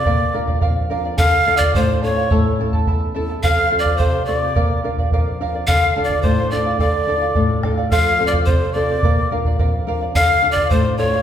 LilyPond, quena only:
\new Staff \with { instrumentName = "Quena" } { \time 2/4 \key d \minor \tempo 4 = 107 d'''8 r4. | \tuplet 3/2 { f'''4 d'''8 } c'''8 cis'''8~ | cis'''8 r4. | \tuplet 3/2 { f'''4 d'''8 } c'''8 d'''8~ |
d'''8 r4. | \tuplet 3/2 { f'''4 d'''8 } c'''8 d'''8 | d'''4. r8 | \tuplet 3/2 { f'''4 d'''8 } c'''8 d'''8~ |
d'''8 r4. | \tuplet 3/2 { f'''4 d'''8 } c'''8 cis'''8 | }